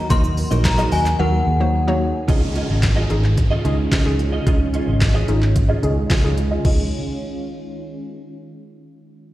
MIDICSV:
0, 0, Header, 1, 9, 480
1, 0, Start_track
1, 0, Key_signature, -5, "major"
1, 0, Tempo, 545455
1, 91, Time_signature, 4, 2, 24, 8
1, 8217, End_track
2, 0, Start_track
2, 0, Title_t, "Synth bell"
2, 0, Program_c, 0, 98
2, 92, Note_on_c, 0, 84, 103
2, 573, Note_on_c, 0, 82, 93
2, 586, Note_off_c, 0, 84, 0
2, 812, Note_on_c, 0, 80, 86
2, 819, Note_off_c, 0, 82, 0
2, 920, Note_off_c, 0, 80, 0
2, 1051, Note_on_c, 0, 78, 76
2, 1736, Note_off_c, 0, 78, 0
2, 8217, End_track
3, 0, Start_track
3, 0, Title_t, "Clean electric guitar"
3, 0, Program_c, 1, 27
3, 85, Note_on_c, 1, 63, 86
3, 91, Note_on_c, 1, 66, 86
3, 95, Note_on_c, 1, 70, 86
3, 100, Note_on_c, 1, 75, 83
3, 196, Note_off_c, 1, 75, 0
3, 202, Note_off_c, 1, 70, 0
3, 207, Note_off_c, 1, 66, 0
3, 269, Note_off_c, 1, 63, 0
3, 446, Note_on_c, 1, 75, 64
3, 452, Note_on_c, 1, 70, 60
3, 457, Note_on_c, 1, 66, 55
3, 461, Note_on_c, 1, 63, 52
3, 557, Note_off_c, 1, 63, 0
3, 561, Note_off_c, 1, 66, 0
3, 565, Note_off_c, 1, 70, 0
3, 568, Note_off_c, 1, 75, 0
3, 685, Note_on_c, 1, 75, 93
3, 692, Note_on_c, 1, 70, 85
3, 697, Note_on_c, 1, 66, 80
3, 701, Note_on_c, 1, 63, 77
3, 796, Note_off_c, 1, 63, 0
3, 802, Note_off_c, 1, 66, 0
3, 806, Note_off_c, 1, 70, 0
3, 806, Note_on_c, 1, 63, 77
3, 811, Note_off_c, 1, 75, 0
3, 812, Note_on_c, 1, 66, 80
3, 817, Note_on_c, 1, 70, 75
3, 821, Note_on_c, 1, 75, 81
3, 917, Note_off_c, 1, 75, 0
3, 922, Note_off_c, 1, 70, 0
3, 928, Note_off_c, 1, 66, 0
3, 950, Note_off_c, 1, 63, 0
3, 2006, Note_on_c, 1, 61, 89
3, 2012, Note_on_c, 1, 65, 79
3, 2017, Note_on_c, 1, 68, 88
3, 2021, Note_on_c, 1, 75, 97
3, 2116, Note_off_c, 1, 75, 0
3, 2122, Note_off_c, 1, 68, 0
3, 2127, Note_off_c, 1, 65, 0
3, 2189, Note_off_c, 1, 61, 0
3, 2245, Note_on_c, 1, 61, 66
3, 2251, Note_on_c, 1, 65, 71
3, 2256, Note_on_c, 1, 68, 72
3, 2260, Note_on_c, 1, 75, 78
3, 2355, Note_off_c, 1, 75, 0
3, 2361, Note_off_c, 1, 68, 0
3, 2366, Note_off_c, 1, 65, 0
3, 2366, Note_on_c, 1, 75, 62
3, 2370, Note_off_c, 1, 61, 0
3, 2372, Note_on_c, 1, 68, 55
3, 2376, Note_on_c, 1, 65, 58
3, 2381, Note_on_c, 1, 61, 50
3, 2476, Note_off_c, 1, 61, 0
3, 2481, Note_off_c, 1, 65, 0
3, 2484, Note_off_c, 1, 68, 0
3, 2487, Note_off_c, 1, 75, 0
3, 2605, Note_on_c, 1, 75, 80
3, 2611, Note_on_c, 1, 68, 76
3, 2616, Note_on_c, 1, 65, 76
3, 2620, Note_on_c, 1, 61, 62
3, 2716, Note_off_c, 1, 61, 0
3, 2720, Note_off_c, 1, 65, 0
3, 2724, Note_off_c, 1, 68, 0
3, 2727, Note_off_c, 1, 75, 0
3, 3085, Note_on_c, 1, 75, 81
3, 3091, Note_on_c, 1, 68, 79
3, 3096, Note_on_c, 1, 65, 70
3, 3101, Note_on_c, 1, 61, 71
3, 3194, Note_off_c, 1, 61, 0
3, 3200, Note_off_c, 1, 65, 0
3, 3205, Note_off_c, 1, 68, 0
3, 3205, Note_on_c, 1, 61, 60
3, 3210, Note_off_c, 1, 75, 0
3, 3211, Note_on_c, 1, 65, 62
3, 3216, Note_on_c, 1, 68, 67
3, 3221, Note_on_c, 1, 75, 66
3, 3316, Note_off_c, 1, 75, 0
3, 3322, Note_off_c, 1, 68, 0
3, 3327, Note_off_c, 1, 65, 0
3, 3349, Note_off_c, 1, 61, 0
3, 3445, Note_on_c, 1, 61, 85
3, 3451, Note_on_c, 1, 65, 93
3, 3456, Note_on_c, 1, 68, 103
3, 3460, Note_on_c, 1, 75, 109
3, 3556, Note_off_c, 1, 75, 0
3, 3562, Note_off_c, 1, 68, 0
3, 3567, Note_off_c, 1, 65, 0
3, 3628, Note_off_c, 1, 61, 0
3, 3805, Note_on_c, 1, 75, 62
3, 3810, Note_on_c, 1, 68, 59
3, 3816, Note_on_c, 1, 65, 53
3, 3820, Note_on_c, 1, 61, 53
3, 3914, Note_off_c, 1, 61, 0
3, 3920, Note_off_c, 1, 65, 0
3, 3924, Note_on_c, 1, 61, 78
3, 3925, Note_off_c, 1, 68, 0
3, 3930, Note_off_c, 1, 75, 0
3, 3930, Note_on_c, 1, 65, 86
3, 3935, Note_on_c, 1, 68, 91
3, 3940, Note_on_c, 1, 75, 89
3, 4036, Note_off_c, 1, 75, 0
3, 4043, Note_off_c, 1, 68, 0
3, 4047, Note_off_c, 1, 65, 0
3, 4108, Note_off_c, 1, 61, 0
3, 4165, Note_on_c, 1, 61, 72
3, 4171, Note_on_c, 1, 65, 77
3, 4176, Note_on_c, 1, 68, 74
3, 4181, Note_on_c, 1, 75, 73
3, 4275, Note_off_c, 1, 75, 0
3, 4281, Note_off_c, 1, 68, 0
3, 4286, Note_off_c, 1, 65, 0
3, 4286, Note_on_c, 1, 75, 68
3, 4291, Note_off_c, 1, 61, 0
3, 4292, Note_on_c, 1, 68, 63
3, 4297, Note_on_c, 1, 65, 58
3, 4302, Note_on_c, 1, 61, 59
3, 4396, Note_off_c, 1, 61, 0
3, 4400, Note_off_c, 1, 65, 0
3, 4404, Note_off_c, 1, 68, 0
3, 4407, Note_off_c, 1, 75, 0
3, 4525, Note_on_c, 1, 75, 83
3, 4531, Note_on_c, 1, 68, 86
3, 4536, Note_on_c, 1, 65, 76
3, 4540, Note_on_c, 1, 61, 70
3, 4636, Note_off_c, 1, 61, 0
3, 4640, Note_off_c, 1, 65, 0
3, 4644, Note_off_c, 1, 68, 0
3, 4647, Note_off_c, 1, 75, 0
3, 5005, Note_on_c, 1, 75, 90
3, 5011, Note_on_c, 1, 68, 86
3, 5016, Note_on_c, 1, 65, 82
3, 5020, Note_on_c, 1, 61, 78
3, 5115, Note_off_c, 1, 61, 0
3, 5121, Note_off_c, 1, 65, 0
3, 5125, Note_on_c, 1, 61, 59
3, 5126, Note_off_c, 1, 68, 0
3, 5130, Note_off_c, 1, 75, 0
3, 5131, Note_on_c, 1, 65, 61
3, 5136, Note_on_c, 1, 68, 64
3, 5141, Note_on_c, 1, 75, 68
3, 5236, Note_off_c, 1, 75, 0
3, 5243, Note_off_c, 1, 68, 0
3, 5247, Note_off_c, 1, 65, 0
3, 5269, Note_off_c, 1, 61, 0
3, 5365, Note_on_c, 1, 61, 87
3, 5371, Note_on_c, 1, 65, 90
3, 5376, Note_on_c, 1, 68, 94
3, 5381, Note_on_c, 1, 75, 98
3, 5477, Note_off_c, 1, 75, 0
3, 5483, Note_off_c, 1, 68, 0
3, 5488, Note_off_c, 1, 65, 0
3, 5549, Note_off_c, 1, 61, 0
3, 5726, Note_on_c, 1, 75, 75
3, 5732, Note_on_c, 1, 68, 68
3, 5737, Note_on_c, 1, 65, 59
3, 5742, Note_on_c, 1, 61, 57
3, 5837, Note_off_c, 1, 61, 0
3, 5842, Note_off_c, 1, 65, 0
3, 5846, Note_off_c, 1, 68, 0
3, 5848, Note_on_c, 1, 61, 77
3, 5850, Note_off_c, 1, 75, 0
3, 5853, Note_on_c, 1, 65, 85
3, 5857, Note_on_c, 1, 68, 86
3, 5861, Note_on_c, 1, 75, 94
3, 5993, Note_off_c, 1, 61, 0
3, 5996, Note_off_c, 1, 65, 0
3, 5998, Note_off_c, 1, 68, 0
3, 6000, Note_off_c, 1, 75, 0
3, 8217, End_track
4, 0, Start_track
4, 0, Title_t, "Synth pluck"
4, 0, Program_c, 2, 84
4, 90, Note_on_c, 2, 54, 80
4, 91, Note_on_c, 2, 58, 71
4, 92, Note_on_c, 2, 63, 71
4, 93, Note_on_c, 2, 66, 71
4, 94, Note_on_c, 2, 70, 84
4, 328, Note_off_c, 2, 54, 0
4, 329, Note_off_c, 2, 58, 0
4, 329, Note_off_c, 2, 63, 0
4, 329, Note_off_c, 2, 66, 0
4, 330, Note_off_c, 2, 70, 0
4, 449, Note_on_c, 2, 54, 78
4, 450, Note_on_c, 2, 58, 71
4, 451, Note_on_c, 2, 63, 74
4, 452, Note_on_c, 2, 66, 75
4, 453, Note_on_c, 2, 70, 87
4, 608, Note_off_c, 2, 54, 0
4, 609, Note_off_c, 2, 58, 0
4, 609, Note_off_c, 2, 63, 0
4, 610, Note_off_c, 2, 66, 0
4, 610, Note_off_c, 2, 70, 0
4, 689, Note_on_c, 2, 54, 79
4, 690, Note_on_c, 2, 58, 73
4, 692, Note_on_c, 2, 63, 69
4, 692, Note_on_c, 2, 66, 71
4, 694, Note_on_c, 2, 68, 81
4, 928, Note_off_c, 2, 54, 0
4, 928, Note_off_c, 2, 58, 0
4, 929, Note_off_c, 2, 63, 0
4, 929, Note_off_c, 2, 66, 0
4, 930, Note_off_c, 2, 68, 0
4, 1050, Note_on_c, 2, 54, 80
4, 1051, Note_on_c, 2, 58, 72
4, 1052, Note_on_c, 2, 63, 71
4, 1053, Note_on_c, 2, 66, 69
4, 1054, Note_on_c, 2, 70, 86
4, 1288, Note_off_c, 2, 54, 0
4, 1288, Note_off_c, 2, 58, 0
4, 1289, Note_off_c, 2, 63, 0
4, 1290, Note_off_c, 2, 66, 0
4, 1290, Note_off_c, 2, 70, 0
4, 1410, Note_on_c, 2, 54, 81
4, 1411, Note_on_c, 2, 58, 74
4, 1412, Note_on_c, 2, 63, 72
4, 1413, Note_on_c, 2, 66, 69
4, 1414, Note_on_c, 2, 72, 89
4, 1569, Note_off_c, 2, 54, 0
4, 1569, Note_off_c, 2, 58, 0
4, 1570, Note_off_c, 2, 63, 0
4, 1570, Note_off_c, 2, 66, 0
4, 1571, Note_off_c, 2, 72, 0
4, 1650, Note_on_c, 2, 54, 97
4, 1651, Note_on_c, 2, 58, 90
4, 1652, Note_on_c, 2, 63, 92
4, 1653, Note_on_c, 2, 66, 88
4, 1654, Note_on_c, 2, 73, 106
4, 1888, Note_off_c, 2, 54, 0
4, 1888, Note_off_c, 2, 58, 0
4, 1889, Note_off_c, 2, 63, 0
4, 1889, Note_off_c, 2, 66, 0
4, 1890, Note_off_c, 2, 73, 0
4, 2009, Note_on_c, 2, 61, 88
4, 2010, Note_on_c, 2, 63, 83
4, 2012, Note_on_c, 2, 65, 81
4, 2013, Note_on_c, 2, 68, 97
4, 2485, Note_off_c, 2, 61, 0
4, 2486, Note_off_c, 2, 63, 0
4, 2486, Note_off_c, 2, 65, 0
4, 2487, Note_off_c, 2, 68, 0
4, 2728, Note_on_c, 2, 61, 89
4, 2729, Note_on_c, 2, 63, 84
4, 2731, Note_on_c, 2, 65, 82
4, 2732, Note_on_c, 2, 68, 99
4, 3046, Note_off_c, 2, 61, 0
4, 3047, Note_off_c, 2, 63, 0
4, 3048, Note_off_c, 2, 65, 0
4, 3048, Note_off_c, 2, 68, 0
4, 3208, Note_on_c, 2, 61, 88
4, 3210, Note_on_c, 2, 63, 81
4, 3211, Note_on_c, 2, 65, 80
4, 3213, Note_on_c, 2, 68, 100
4, 3447, Note_off_c, 2, 61, 0
4, 3448, Note_off_c, 2, 63, 0
4, 3449, Note_off_c, 2, 65, 0
4, 3449, Note_off_c, 2, 68, 0
4, 3568, Note_on_c, 2, 61, 94
4, 3570, Note_on_c, 2, 63, 86
4, 3571, Note_on_c, 2, 65, 85
4, 3572, Note_on_c, 2, 68, 103
4, 3807, Note_off_c, 2, 61, 0
4, 3808, Note_off_c, 2, 63, 0
4, 3809, Note_off_c, 2, 65, 0
4, 3809, Note_off_c, 2, 68, 0
4, 3928, Note_on_c, 2, 61, 90
4, 3929, Note_on_c, 2, 63, 85
4, 3931, Note_on_c, 2, 65, 82
4, 3933, Note_on_c, 2, 68, 98
4, 4405, Note_off_c, 2, 61, 0
4, 4405, Note_off_c, 2, 63, 0
4, 4406, Note_off_c, 2, 65, 0
4, 4407, Note_off_c, 2, 68, 0
4, 4649, Note_on_c, 2, 61, 90
4, 4650, Note_on_c, 2, 63, 85
4, 4652, Note_on_c, 2, 65, 81
4, 4653, Note_on_c, 2, 68, 99
4, 4967, Note_off_c, 2, 61, 0
4, 4967, Note_off_c, 2, 63, 0
4, 4968, Note_off_c, 2, 65, 0
4, 4969, Note_off_c, 2, 68, 0
4, 5129, Note_on_c, 2, 61, 89
4, 5131, Note_on_c, 2, 63, 82
4, 5132, Note_on_c, 2, 65, 82
4, 5134, Note_on_c, 2, 68, 103
4, 5367, Note_off_c, 2, 61, 0
4, 5368, Note_off_c, 2, 63, 0
4, 5369, Note_off_c, 2, 65, 0
4, 5370, Note_off_c, 2, 68, 0
4, 5489, Note_on_c, 2, 61, 97
4, 5491, Note_on_c, 2, 63, 87
4, 5493, Note_on_c, 2, 65, 88
4, 5494, Note_on_c, 2, 68, 105
4, 5728, Note_off_c, 2, 61, 0
4, 5729, Note_off_c, 2, 63, 0
4, 5729, Note_off_c, 2, 65, 0
4, 5730, Note_off_c, 2, 68, 0
4, 5851, Note_on_c, 2, 61, 85
4, 5851, Note_on_c, 2, 63, 81
4, 5851, Note_on_c, 2, 65, 78
4, 5851, Note_on_c, 2, 68, 93
4, 6074, Note_off_c, 2, 61, 0
4, 6074, Note_off_c, 2, 63, 0
4, 6074, Note_off_c, 2, 65, 0
4, 6074, Note_off_c, 2, 68, 0
4, 8217, End_track
5, 0, Start_track
5, 0, Title_t, "Ambient pad"
5, 0, Program_c, 3, 92
5, 0, Note_on_c, 3, 51, 72
5, 0, Note_on_c, 3, 54, 75
5, 0, Note_on_c, 3, 58, 71
5, 92, Note_on_c, 3, 68, 88
5, 1976, Note_off_c, 3, 51, 0
5, 1976, Note_off_c, 3, 54, 0
5, 1976, Note_off_c, 3, 58, 0
5, 1992, Note_off_c, 3, 68, 0
5, 2011, Note_on_c, 3, 51, 77
5, 2012, Note_on_c, 3, 56, 68
5, 2012, Note_on_c, 3, 61, 73
5, 2012, Note_on_c, 3, 65, 83
5, 5816, Note_off_c, 3, 51, 0
5, 5816, Note_off_c, 3, 56, 0
5, 5816, Note_off_c, 3, 61, 0
5, 5816, Note_off_c, 3, 65, 0
5, 8217, End_track
6, 0, Start_track
6, 0, Title_t, "Fingered electric bass"
6, 0, Program_c, 4, 33
6, 91, Note_on_c, 4, 39, 104
6, 376, Note_off_c, 4, 39, 0
6, 450, Note_on_c, 4, 34, 91
6, 736, Note_off_c, 4, 34, 0
6, 811, Note_on_c, 4, 39, 91
6, 1001, Note_off_c, 4, 39, 0
6, 1051, Note_on_c, 4, 39, 105
6, 1241, Note_off_c, 4, 39, 0
6, 1290, Note_on_c, 4, 39, 93
6, 1862, Note_off_c, 4, 39, 0
6, 2011, Note_on_c, 4, 37, 101
6, 2296, Note_off_c, 4, 37, 0
6, 2371, Note_on_c, 4, 32, 89
6, 2656, Note_off_c, 4, 32, 0
6, 2730, Note_on_c, 4, 32, 97
6, 3111, Note_off_c, 4, 32, 0
6, 3210, Note_on_c, 4, 37, 89
6, 3401, Note_off_c, 4, 37, 0
6, 3570, Note_on_c, 4, 37, 96
6, 3856, Note_off_c, 4, 37, 0
6, 3931, Note_on_c, 4, 37, 105
6, 4216, Note_off_c, 4, 37, 0
6, 4290, Note_on_c, 4, 32, 90
6, 4576, Note_off_c, 4, 32, 0
6, 4651, Note_on_c, 4, 32, 102
6, 5031, Note_off_c, 4, 32, 0
6, 5131, Note_on_c, 4, 37, 90
6, 5322, Note_off_c, 4, 37, 0
6, 5491, Note_on_c, 4, 37, 93
6, 5777, Note_off_c, 4, 37, 0
6, 5852, Note_on_c, 4, 37, 98
6, 6075, Note_off_c, 4, 37, 0
6, 8217, End_track
7, 0, Start_track
7, 0, Title_t, "Downlifter"
7, 0, Program_c, 5, 103
7, 2010, Note_on_c, 5, 60, 82
7, 5851, Note_off_c, 5, 60, 0
7, 8217, End_track
8, 0, Start_track
8, 0, Title_t, "Muted clean electric guitar strokes"
8, 207, Note_on_c, 9, 29, 41
8, 295, Note_off_c, 9, 29, 0
8, 327, Note_on_c, 9, 29, 39
8, 415, Note_off_c, 9, 29, 0
8, 568, Note_on_c, 9, 29, 49
8, 656, Note_off_c, 9, 29, 0
8, 927, Note_on_c, 9, 29, 49
8, 1015, Note_off_c, 9, 29, 0
8, 2127, Note_on_c, 9, 29, 50
8, 2215, Note_off_c, 9, 29, 0
8, 2487, Note_on_c, 9, 29, 35
8, 2575, Note_off_c, 9, 29, 0
8, 2727, Note_on_c, 9, 29, 48
8, 2815, Note_off_c, 9, 29, 0
8, 2846, Note_on_c, 9, 29, 47
8, 2934, Note_off_c, 9, 29, 0
8, 2966, Note_on_c, 9, 29, 41
8, 3054, Note_off_c, 9, 29, 0
8, 3326, Note_on_c, 9, 29, 57
8, 3414, Note_off_c, 9, 29, 0
8, 3566, Note_on_c, 9, 29, 49
8, 3654, Note_off_c, 9, 29, 0
8, 3686, Note_on_c, 9, 29, 43
8, 3774, Note_off_c, 9, 29, 0
8, 4047, Note_on_c, 9, 29, 52
8, 4135, Note_off_c, 9, 29, 0
8, 4407, Note_on_c, 9, 29, 43
8, 4495, Note_off_c, 9, 29, 0
8, 4647, Note_on_c, 9, 29, 43
8, 4735, Note_off_c, 9, 29, 0
8, 4766, Note_on_c, 9, 29, 42
8, 4854, Note_off_c, 9, 29, 0
8, 4886, Note_on_c, 9, 29, 39
8, 4974, Note_off_c, 9, 29, 0
8, 5247, Note_on_c, 9, 29, 51
8, 5335, Note_off_c, 9, 29, 0
8, 5488, Note_on_c, 9, 29, 45
8, 5576, Note_off_c, 9, 29, 0
8, 5608, Note_on_c, 9, 29, 46
8, 5696, Note_off_c, 9, 29, 0
8, 8217, End_track
9, 0, Start_track
9, 0, Title_t, "Drums"
9, 90, Note_on_c, 9, 42, 80
9, 90, Note_on_c, 9, 82, 78
9, 91, Note_on_c, 9, 36, 121
9, 92, Note_off_c, 9, 82, 0
9, 92, Note_on_c, 9, 82, 77
9, 178, Note_off_c, 9, 42, 0
9, 179, Note_off_c, 9, 36, 0
9, 180, Note_off_c, 9, 82, 0
9, 210, Note_on_c, 9, 82, 50
9, 212, Note_off_c, 9, 82, 0
9, 212, Note_on_c, 9, 82, 62
9, 300, Note_off_c, 9, 82, 0
9, 329, Note_on_c, 9, 46, 73
9, 329, Note_on_c, 9, 82, 53
9, 334, Note_off_c, 9, 82, 0
9, 334, Note_on_c, 9, 82, 55
9, 417, Note_off_c, 9, 46, 0
9, 422, Note_off_c, 9, 82, 0
9, 450, Note_on_c, 9, 82, 67
9, 452, Note_off_c, 9, 82, 0
9, 452, Note_on_c, 9, 82, 76
9, 540, Note_off_c, 9, 82, 0
9, 568, Note_on_c, 9, 39, 118
9, 569, Note_on_c, 9, 42, 79
9, 569, Note_on_c, 9, 82, 78
9, 570, Note_off_c, 9, 82, 0
9, 570, Note_on_c, 9, 82, 74
9, 571, Note_on_c, 9, 36, 108
9, 573, Note_on_c, 9, 38, 93
9, 656, Note_off_c, 9, 39, 0
9, 657, Note_off_c, 9, 42, 0
9, 658, Note_off_c, 9, 82, 0
9, 659, Note_off_c, 9, 36, 0
9, 661, Note_off_c, 9, 38, 0
9, 688, Note_on_c, 9, 82, 58
9, 691, Note_off_c, 9, 82, 0
9, 691, Note_on_c, 9, 82, 57
9, 779, Note_off_c, 9, 82, 0
9, 808, Note_on_c, 9, 46, 74
9, 808, Note_on_c, 9, 82, 53
9, 812, Note_off_c, 9, 82, 0
9, 812, Note_on_c, 9, 82, 51
9, 896, Note_off_c, 9, 46, 0
9, 900, Note_off_c, 9, 82, 0
9, 930, Note_on_c, 9, 82, 63
9, 932, Note_off_c, 9, 82, 0
9, 932, Note_on_c, 9, 39, 64
9, 932, Note_on_c, 9, 82, 54
9, 1020, Note_off_c, 9, 39, 0
9, 1020, Note_off_c, 9, 82, 0
9, 2010, Note_on_c, 9, 42, 74
9, 2011, Note_on_c, 9, 36, 110
9, 2098, Note_off_c, 9, 42, 0
9, 2099, Note_off_c, 9, 36, 0
9, 2248, Note_on_c, 9, 42, 53
9, 2336, Note_off_c, 9, 42, 0
9, 2489, Note_on_c, 9, 39, 106
9, 2490, Note_on_c, 9, 42, 76
9, 2491, Note_on_c, 9, 36, 101
9, 2494, Note_on_c, 9, 38, 87
9, 2577, Note_off_c, 9, 39, 0
9, 2578, Note_off_c, 9, 42, 0
9, 2579, Note_off_c, 9, 36, 0
9, 2582, Note_off_c, 9, 38, 0
9, 2729, Note_on_c, 9, 42, 49
9, 2817, Note_off_c, 9, 42, 0
9, 2853, Note_on_c, 9, 39, 64
9, 2941, Note_off_c, 9, 39, 0
9, 2970, Note_on_c, 9, 42, 82
9, 2973, Note_on_c, 9, 36, 114
9, 3058, Note_off_c, 9, 42, 0
9, 3061, Note_off_c, 9, 36, 0
9, 3212, Note_on_c, 9, 42, 56
9, 3300, Note_off_c, 9, 42, 0
9, 3448, Note_on_c, 9, 36, 113
9, 3450, Note_on_c, 9, 42, 78
9, 3451, Note_on_c, 9, 39, 113
9, 3456, Note_on_c, 9, 38, 91
9, 3536, Note_off_c, 9, 36, 0
9, 3538, Note_off_c, 9, 42, 0
9, 3539, Note_off_c, 9, 39, 0
9, 3544, Note_off_c, 9, 38, 0
9, 3690, Note_on_c, 9, 42, 54
9, 3778, Note_off_c, 9, 42, 0
9, 3931, Note_on_c, 9, 36, 116
9, 3931, Note_on_c, 9, 42, 75
9, 4019, Note_off_c, 9, 36, 0
9, 4019, Note_off_c, 9, 42, 0
9, 4169, Note_on_c, 9, 42, 52
9, 4257, Note_off_c, 9, 42, 0
9, 4409, Note_on_c, 9, 39, 107
9, 4411, Note_on_c, 9, 36, 106
9, 4411, Note_on_c, 9, 42, 78
9, 4414, Note_on_c, 9, 38, 89
9, 4497, Note_off_c, 9, 39, 0
9, 4499, Note_off_c, 9, 36, 0
9, 4499, Note_off_c, 9, 42, 0
9, 4502, Note_off_c, 9, 38, 0
9, 4648, Note_on_c, 9, 42, 48
9, 4736, Note_off_c, 9, 42, 0
9, 4772, Note_on_c, 9, 39, 62
9, 4860, Note_off_c, 9, 39, 0
9, 4890, Note_on_c, 9, 42, 84
9, 4893, Note_on_c, 9, 36, 118
9, 4978, Note_off_c, 9, 42, 0
9, 4981, Note_off_c, 9, 36, 0
9, 5132, Note_on_c, 9, 42, 57
9, 5220, Note_off_c, 9, 42, 0
9, 5369, Note_on_c, 9, 36, 123
9, 5370, Note_on_c, 9, 42, 81
9, 5372, Note_on_c, 9, 39, 120
9, 5376, Note_on_c, 9, 38, 93
9, 5457, Note_off_c, 9, 36, 0
9, 5458, Note_off_c, 9, 42, 0
9, 5460, Note_off_c, 9, 39, 0
9, 5464, Note_off_c, 9, 38, 0
9, 5610, Note_on_c, 9, 42, 54
9, 5698, Note_off_c, 9, 42, 0
9, 5851, Note_on_c, 9, 36, 107
9, 5851, Note_on_c, 9, 49, 93
9, 5939, Note_off_c, 9, 36, 0
9, 5939, Note_off_c, 9, 49, 0
9, 8217, End_track
0, 0, End_of_file